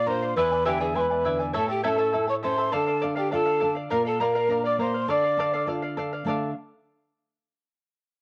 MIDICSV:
0, 0, Header, 1, 5, 480
1, 0, Start_track
1, 0, Tempo, 588813
1, 298, Time_signature, 2, 2, 24, 8
1, 6698, End_track
2, 0, Start_track
2, 0, Title_t, "Quena"
2, 0, Program_c, 0, 77
2, 58, Note_on_c, 0, 84, 76
2, 299, Note_off_c, 0, 84, 0
2, 304, Note_on_c, 0, 83, 77
2, 526, Note_off_c, 0, 83, 0
2, 546, Note_on_c, 0, 79, 70
2, 666, Note_on_c, 0, 80, 65
2, 678, Note_off_c, 0, 79, 0
2, 782, Note_on_c, 0, 84, 67
2, 794, Note_off_c, 0, 80, 0
2, 821, Note_on_c, 0, 83, 73
2, 829, Note_off_c, 0, 84, 0
2, 1044, Note_off_c, 0, 83, 0
2, 1258, Note_on_c, 0, 81, 77
2, 1372, Note_off_c, 0, 81, 0
2, 1384, Note_on_c, 0, 79, 65
2, 1496, Note_off_c, 0, 79, 0
2, 1505, Note_on_c, 0, 82, 69
2, 1533, Note_on_c, 0, 81, 75
2, 1541, Note_off_c, 0, 82, 0
2, 1841, Note_off_c, 0, 81, 0
2, 1870, Note_on_c, 0, 85, 67
2, 1918, Note_off_c, 0, 85, 0
2, 1983, Note_on_c, 0, 84, 74
2, 2226, Note_on_c, 0, 81, 74
2, 2238, Note_off_c, 0, 84, 0
2, 2467, Note_off_c, 0, 81, 0
2, 2588, Note_on_c, 0, 79, 64
2, 2699, Note_off_c, 0, 79, 0
2, 2712, Note_on_c, 0, 81, 67
2, 3045, Note_off_c, 0, 81, 0
2, 3187, Note_on_c, 0, 82, 75
2, 3299, Note_off_c, 0, 82, 0
2, 3314, Note_on_c, 0, 81, 65
2, 3435, Note_on_c, 0, 83, 69
2, 3447, Note_off_c, 0, 81, 0
2, 3468, Note_on_c, 0, 82, 75
2, 3476, Note_off_c, 0, 83, 0
2, 3791, Note_off_c, 0, 82, 0
2, 3799, Note_on_c, 0, 86, 71
2, 3905, Note_off_c, 0, 86, 0
2, 3928, Note_on_c, 0, 84, 66
2, 4161, Note_on_c, 0, 86, 70
2, 4173, Note_off_c, 0, 84, 0
2, 4633, Note_off_c, 0, 86, 0
2, 6698, End_track
3, 0, Start_track
3, 0, Title_t, "Charango"
3, 0, Program_c, 1, 24
3, 52, Note_on_c, 1, 70, 53
3, 56, Note_on_c, 1, 74, 56
3, 65, Note_on_c, 1, 77, 61
3, 171, Note_off_c, 1, 77, 0
3, 175, Note_off_c, 1, 70, 0
3, 177, Note_off_c, 1, 74, 0
3, 180, Note_on_c, 1, 77, 47
3, 191, Note_on_c, 1, 74, 40
3, 293, Note_off_c, 1, 74, 0
3, 296, Note_off_c, 1, 77, 0
3, 296, Note_on_c, 1, 71, 66
3, 300, Note_on_c, 1, 64, 64
3, 300, Note_on_c, 1, 76, 67
3, 304, Note_on_c, 1, 80, 70
3, 305, Note_on_c, 1, 74, 73
3, 409, Note_off_c, 1, 80, 0
3, 415, Note_off_c, 1, 74, 0
3, 418, Note_off_c, 1, 71, 0
3, 419, Note_on_c, 1, 80, 47
3, 420, Note_off_c, 1, 64, 0
3, 420, Note_off_c, 1, 76, 0
3, 424, Note_on_c, 1, 74, 42
3, 430, Note_on_c, 1, 64, 37
3, 528, Note_off_c, 1, 64, 0
3, 529, Note_off_c, 1, 74, 0
3, 530, Note_off_c, 1, 80, 0
3, 532, Note_on_c, 1, 71, 73
3, 534, Note_on_c, 1, 76, 81
3, 537, Note_on_c, 1, 64, 71
3, 539, Note_on_c, 1, 74, 82
3, 540, Note_on_c, 1, 80, 84
3, 644, Note_off_c, 1, 80, 0
3, 646, Note_off_c, 1, 74, 0
3, 649, Note_off_c, 1, 64, 0
3, 649, Note_off_c, 1, 76, 0
3, 650, Note_off_c, 1, 71, 0
3, 654, Note_on_c, 1, 80, 55
3, 656, Note_on_c, 1, 74, 50
3, 659, Note_on_c, 1, 64, 56
3, 659, Note_on_c, 1, 76, 54
3, 660, Note_on_c, 1, 71, 48
3, 760, Note_off_c, 1, 76, 0
3, 765, Note_off_c, 1, 64, 0
3, 769, Note_on_c, 1, 76, 48
3, 770, Note_off_c, 1, 74, 0
3, 773, Note_off_c, 1, 80, 0
3, 775, Note_on_c, 1, 64, 56
3, 780, Note_on_c, 1, 74, 55
3, 781, Note_off_c, 1, 71, 0
3, 783, Note_on_c, 1, 80, 62
3, 887, Note_off_c, 1, 80, 0
3, 895, Note_off_c, 1, 74, 0
3, 896, Note_off_c, 1, 76, 0
3, 897, Note_on_c, 1, 80, 48
3, 898, Note_off_c, 1, 64, 0
3, 904, Note_on_c, 1, 74, 42
3, 908, Note_on_c, 1, 64, 36
3, 1010, Note_off_c, 1, 64, 0
3, 1016, Note_off_c, 1, 74, 0
3, 1016, Note_on_c, 1, 76, 55
3, 1020, Note_off_c, 1, 80, 0
3, 1020, Note_on_c, 1, 64, 55
3, 1026, Note_on_c, 1, 74, 58
3, 1028, Note_on_c, 1, 80, 60
3, 1122, Note_off_c, 1, 80, 0
3, 1130, Note_off_c, 1, 74, 0
3, 1132, Note_on_c, 1, 80, 47
3, 1135, Note_off_c, 1, 64, 0
3, 1140, Note_off_c, 1, 76, 0
3, 1140, Note_on_c, 1, 74, 46
3, 1145, Note_on_c, 1, 64, 37
3, 1245, Note_off_c, 1, 64, 0
3, 1250, Note_on_c, 1, 73, 68
3, 1254, Note_on_c, 1, 64, 71
3, 1255, Note_off_c, 1, 80, 0
3, 1256, Note_on_c, 1, 76, 77
3, 1257, Note_off_c, 1, 74, 0
3, 1258, Note_on_c, 1, 81, 74
3, 1260, Note_on_c, 1, 69, 67
3, 1361, Note_off_c, 1, 81, 0
3, 1370, Note_off_c, 1, 69, 0
3, 1371, Note_on_c, 1, 81, 46
3, 1375, Note_off_c, 1, 64, 0
3, 1377, Note_off_c, 1, 73, 0
3, 1380, Note_off_c, 1, 76, 0
3, 1380, Note_on_c, 1, 69, 41
3, 1385, Note_on_c, 1, 64, 39
3, 1492, Note_off_c, 1, 64, 0
3, 1493, Note_off_c, 1, 69, 0
3, 1494, Note_off_c, 1, 81, 0
3, 1496, Note_on_c, 1, 73, 73
3, 1499, Note_on_c, 1, 76, 74
3, 1502, Note_on_c, 1, 64, 77
3, 1503, Note_on_c, 1, 69, 78
3, 1504, Note_on_c, 1, 81, 80
3, 1603, Note_off_c, 1, 81, 0
3, 1608, Note_off_c, 1, 69, 0
3, 1610, Note_off_c, 1, 64, 0
3, 1611, Note_off_c, 1, 76, 0
3, 1613, Note_on_c, 1, 81, 60
3, 1615, Note_off_c, 1, 73, 0
3, 1618, Note_on_c, 1, 69, 55
3, 1619, Note_on_c, 1, 64, 53
3, 1621, Note_on_c, 1, 76, 51
3, 1625, Note_on_c, 1, 73, 48
3, 1725, Note_off_c, 1, 76, 0
3, 1730, Note_off_c, 1, 64, 0
3, 1733, Note_off_c, 1, 69, 0
3, 1735, Note_on_c, 1, 76, 50
3, 1736, Note_off_c, 1, 81, 0
3, 1740, Note_on_c, 1, 64, 54
3, 1742, Note_on_c, 1, 69, 56
3, 1745, Note_off_c, 1, 73, 0
3, 1746, Note_on_c, 1, 81, 57
3, 1844, Note_off_c, 1, 81, 0
3, 1851, Note_off_c, 1, 69, 0
3, 1854, Note_on_c, 1, 81, 46
3, 1856, Note_off_c, 1, 64, 0
3, 1860, Note_off_c, 1, 76, 0
3, 1861, Note_on_c, 1, 69, 43
3, 1865, Note_on_c, 1, 64, 38
3, 1972, Note_off_c, 1, 64, 0
3, 1978, Note_off_c, 1, 69, 0
3, 1978, Note_on_c, 1, 76, 55
3, 1980, Note_off_c, 1, 81, 0
3, 1982, Note_on_c, 1, 64, 53
3, 1988, Note_on_c, 1, 69, 59
3, 1990, Note_on_c, 1, 81, 60
3, 2089, Note_off_c, 1, 81, 0
3, 2094, Note_off_c, 1, 69, 0
3, 2099, Note_on_c, 1, 81, 48
3, 2100, Note_off_c, 1, 64, 0
3, 2102, Note_off_c, 1, 76, 0
3, 2103, Note_on_c, 1, 69, 45
3, 2110, Note_on_c, 1, 64, 43
3, 2207, Note_off_c, 1, 69, 0
3, 2213, Note_off_c, 1, 64, 0
3, 2217, Note_on_c, 1, 69, 68
3, 2221, Note_on_c, 1, 74, 65
3, 2223, Note_off_c, 1, 81, 0
3, 2223, Note_on_c, 1, 77, 74
3, 2324, Note_off_c, 1, 77, 0
3, 2334, Note_on_c, 1, 77, 43
3, 2335, Note_off_c, 1, 74, 0
3, 2342, Note_off_c, 1, 69, 0
3, 2345, Note_on_c, 1, 74, 41
3, 2449, Note_off_c, 1, 74, 0
3, 2456, Note_off_c, 1, 77, 0
3, 2457, Note_on_c, 1, 69, 71
3, 2458, Note_on_c, 1, 74, 76
3, 2466, Note_on_c, 1, 77, 75
3, 2562, Note_off_c, 1, 77, 0
3, 2571, Note_off_c, 1, 69, 0
3, 2571, Note_off_c, 1, 74, 0
3, 2572, Note_on_c, 1, 77, 55
3, 2580, Note_on_c, 1, 74, 56
3, 2581, Note_on_c, 1, 69, 52
3, 2689, Note_off_c, 1, 69, 0
3, 2694, Note_off_c, 1, 74, 0
3, 2698, Note_on_c, 1, 69, 48
3, 2700, Note_off_c, 1, 77, 0
3, 2704, Note_on_c, 1, 74, 60
3, 2708, Note_on_c, 1, 77, 59
3, 2807, Note_off_c, 1, 77, 0
3, 2817, Note_on_c, 1, 77, 54
3, 2818, Note_off_c, 1, 74, 0
3, 2823, Note_off_c, 1, 69, 0
3, 2828, Note_on_c, 1, 74, 38
3, 2932, Note_off_c, 1, 74, 0
3, 2934, Note_on_c, 1, 69, 58
3, 2937, Note_off_c, 1, 77, 0
3, 2941, Note_on_c, 1, 74, 63
3, 2947, Note_on_c, 1, 77, 60
3, 3045, Note_off_c, 1, 77, 0
3, 3055, Note_on_c, 1, 77, 46
3, 3058, Note_off_c, 1, 74, 0
3, 3061, Note_off_c, 1, 69, 0
3, 3067, Note_on_c, 1, 74, 41
3, 3173, Note_off_c, 1, 74, 0
3, 3179, Note_off_c, 1, 77, 0
3, 3182, Note_on_c, 1, 70, 68
3, 3183, Note_on_c, 1, 74, 73
3, 3188, Note_on_c, 1, 77, 77
3, 3289, Note_off_c, 1, 77, 0
3, 3299, Note_on_c, 1, 77, 48
3, 3301, Note_off_c, 1, 74, 0
3, 3304, Note_off_c, 1, 70, 0
3, 3311, Note_on_c, 1, 74, 40
3, 3420, Note_off_c, 1, 74, 0
3, 3423, Note_off_c, 1, 77, 0
3, 3423, Note_on_c, 1, 70, 73
3, 3430, Note_on_c, 1, 74, 73
3, 3432, Note_on_c, 1, 77, 82
3, 3536, Note_off_c, 1, 77, 0
3, 3540, Note_off_c, 1, 74, 0
3, 3544, Note_off_c, 1, 70, 0
3, 3546, Note_on_c, 1, 77, 58
3, 3550, Note_on_c, 1, 74, 54
3, 3553, Note_on_c, 1, 70, 48
3, 3655, Note_off_c, 1, 70, 0
3, 3663, Note_off_c, 1, 74, 0
3, 3665, Note_on_c, 1, 70, 58
3, 3667, Note_off_c, 1, 77, 0
3, 3673, Note_on_c, 1, 74, 58
3, 3680, Note_on_c, 1, 77, 61
3, 3773, Note_off_c, 1, 77, 0
3, 3783, Note_on_c, 1, 77, 48
3, 3785, Note_off_c, 1, 74, 0
3, 3786, Note_off_c, 1, 70, 0
3, 3795, Note_on_c, 1, 74, 41
3, 3901, Note_off_c, 1, 74, 0
3, 3905, Note_off_c, 1, 77, 0
3, 3908, Note_on_c, 1, 70, 52
3, 3911, Note_on_c, 1, 74, 58
3, 3920, Note_on_c, 1, 77, 61
3, 4019, Note_off_c, 1, 77, 0
3, 4027, Note_off_c, 1, 70, 0
3, 4029, Note_off_c, 1, 74, 0
3, 4029, Note_on_c, 1, 77, 49
3, 4040, Note_on_c, 1, 74, 37
3, 4144, Note_off_c, 1, 74, 0
3, 4147, Note_on_c, 1, 69, 67
3, 4148, Note_off_c, 1, 77, 0
3, 4154, Note_on_c, 1, 74, 68
3, 4157, Note_on_c, 1, 77, 70
3, 4260, Note_off_c, 1, 77, 0
3, 4267, Note_off_c, 1, 69, 0
3, 4270, Note_off_c, 1, 74, 0
3, 4270, Note_on_c, 1, 77, 47
3, 4281, Note_on_c, 1, 74, 42
3, 4388, Note_off_c, 1, 77, 0
3, 4391, Note_off_c, 1, 74, 0
3, 4393, Note_on_c, 1, 69, 67
3, 4400, Note_on_c, 1, 74, 71
3, 4402, Note_on_c, 1, 77, 83
3, 4502, Note_off_c, 1, 77, 0
3, 4505, Note_off_c, 1, 74, 0
3, 4509, Note_off_c, 1, 69, 0
3, 4512, Note_on_c, 1, 77, 56
3, 4515, Note_on_c, 1, 74, 59
3, 4521, Note_on_c, 1, 69, 53
3, 4617, Note_off_c, 1, 69, 0
3, 4621, Note_off_c, 1, 74, 0
3, 4627, Note_on_c, 1, 69, 53
3, 4629, Note_off_c, 1, 77, 0
3, 4631, Note_on_c, 1, 74, 53
3, 4638, Note_on_c, 1, 77, 60
3, 4738, Note_off_c, 1, 77, 0
3, 4746, Note_off_c, 1, 69, 0
3, 4748, Note_off_c, 1, 74, 0
3, 4748, Note_on_c, 1, 77, 55
3, 4759, Note_on_c, 1, 74, 41
3, 4864, Note_off_c, 1, 74, 0
3, 4866, Note_off_c, 1, 77, 0
3, 4868, Note_on_c, 1, 69, 64
3, 4874, Note_on_c, 1, 74, 61
3, 4881, Note_on_c, 1, 77, 67
3, 4986, Note_off_c, 1, 69, 0
3, 4986, Note_off_c, 1, 77, 0
3, 4989, Note_off_c, 1, 74, 0
3, 4996, Note_on_c, 1, 77, 51
3, 5005, Note_on_c, 1, 74, 43
3, 5109, Note_on_c, 1, 69, 62
3, 5110, Note_off_c, 1, 77, 0
3, 5111, Note_off_c, 1, 74, 0
3, 5121, Note_on_c, 1, 74, 75
3, 5130, Note_on_c, 1, 77, 72
3, 5298, Note_off_c, 1, 69, 0
3, 5304, Note_off_c, 1, 74, 0
3, 5309, Note_off_c, 1, 77, 0
3, 6698, End_track
4, 0, Start_track
4, 0, Title_t, "Pan flute"
4, 0, Program_c, 2, 75
4, 0, Note_on_c, 2, 74, 93
4, 70, Note_on_c, 2, 72, 90
4, 82, Note_off_c, 2, 74, 0
4, 295, Note_off_c, 2, 72, 0
4, 300, Note_on_c, 2, 71, 93
4, 524, Note_off_c, 2, 71, 0
4, 540, Note_on_c, 2, 67, 80
4, 658, Note_on_c, 2, 68, 78
4, 670, Note_off_c, 2, 67, 0
4, 779, Note_on_c, 2, 71, 86
4, 791, Note_off_c, 2, 68, 0
4, 1142, Note_off_c, 2, 71, 0
4, 1263, Note_on_c, 2, 69, 83
4, 1375, Note_off_c, 2, 69, 0
4, 1388, Note_on_c, 2, 67, 84
4, 1495, Note_off_c, 2, 67, 0
4, 1500, Note_on_c, 2, 69, 90
4, 1838, Note_off_c, 2, 69, 0
4, 1866, Note_on_c, 2, 73, 81
4, 1915, Note_off_c, 2, 73, 0
4, 1984, Note_on_c, 2, 72, 83
4, 2224, Note_on_c, 2, 69, 82
4, 2237, Note_off_c, 2, 72, 0
4, 2466, Note_off_c, 2, 69, 0
4, 2587, Note_on_c, 2, 67, 77
4, 2699, Note_off_c, 2, 67, 0
4, 2710, Note_on_c, 2, 69, 80
4, 2998, Note_off_c, 2, 69, 0
4, 3185, Note_on_c, 2, 70, 84
4, 3298, Note_off_c, 2, 70, 0
4, 3310, Note_on_c, 2, 69, 75
4, 3428, Note_on_c, 2, 70, 82
4, 3441, Note_off_c, 2, 69, 0
4, 3784, Note_off_c, 2, 70, 0
4, 3789, Note_on_c, 2, 74, 82
4, 3900, Note_off_c, 2, 74, 0
4, 3911, Note_on_c, 2, 72, 82
4, 4153, Note_on_c, 2, 74, 85
4, 4165, Note_off_c, 2, 72, 0
4, 4629, Note_off_c, 2, 74, 0
4, 6698, End_track
5, 0, Start_track
5, 0, Title_t, "Nylon-string guitar"
5, 0, Program_c, 3, 24
5, 0, Note_on_c, 3, 46, 67
5, 55, Note_on_c, 3, 62, 53
5, 269, Note_off_c, 3, 46, 0
5, 290, Note_off_c, 3, 62, 0
5, 296, Note_on_c, 3, 40, 64
5, 538, Note_on_c, 3, 50, 45
5, 773, Note_off_c, 3, 50, 0
5, 781, Note_on_c, 3, 56, 53
5, 1015, Note_off_c, 3, 56, 0
5, 1020, Note_on_c, 3, 50, 50
5, 1233, Note_off_c, 3, 40, 0
5, 1255, Note_off_c, 3, 50, 0
5, 1267, Note_on_c, 3, 45, 62
5, 1509, Note_on_c, 3, 61, 48
5, 1740, Note_off_c, 3, 61, 0
5, 1753, Note_on_c, 3, 64, 48
5, 1983, Note_off_c, 3, 64, 0
5, 1994, Note_on_c, 3, 61, 52
5, 2199, Note_off_c, 3, 45, 0
5, 2223, Note_off_c, 3, 61, 0
5, 2226, Note_on_c, 3, 50, 60
5, 2476, Note_on_c, 3, 62, 49
5, 2705, Note_off_c, 3, 62, 0
5, 2717, Note_on_c, 3, 65, 51
5, 2945, Note_off_c, 3, 65, 0
5, 2953, Note_on_c, 3, 62, 51
5, 3159, Note_off_c, 3, 50, 0
5, 3183, Note_off_c, 3, 62, 0
5, 3190, Note_on_c, 3, 46, 61
5, 3423, Note_on_c, 3, 58, 48
5, 3657, Note_on_c, 3, 62, 49
5, 3658, Note_off_c, 3, 58, 0
5, 3895, Note_off_c, 3, 62, 0
5, 3900, Note_on_c, 3, 58, 52
5, 4120, Note_off_c, 3, 46, 0
5, 4136, Note_off_c, 3, 58, 0
5, 4143, Note_on_c, 3, 50, 64
5, 4380, Note_on_c, 3, 62, 47
5, 4615, Note_off_c, 3, 62, 0
5, 4623, Note_on_c, 3, 65, 49
5, 4857, Note_off_c, 3, 65, 0
5, 4869, Note_on_c, 3, 62, 51
5, 5074, Note_off_c, 3, 50, 0
5, 5087, Note_off_c, 3, 62, 0
5, 5092, Note_on_c, 3, 50, 52
5, 5098, Note_on_c, 3, 57, 45
5, 5100, Note_on_c, 3, 69, 45
5, 5102, Note_on_c, 3, 62, 46
5, 5107, Note_on_c, 3, 77, 48
5, 5108, Note_on_c, 3, 74, 56
5, 5322, Note_off_c, 3, 50, 0
5, 5322, Note_off_c, 3, 57, 0
5, 5323, Note_off_c, 3, 62, 0
5, 5324, Note_off_c, 3, 69, 0
5, 5328, Note_off_c, 3, 77, 0
5, 5329, Note_off_c, 3, 74, 0
5, 6698, End_track
0, 0, End_of_file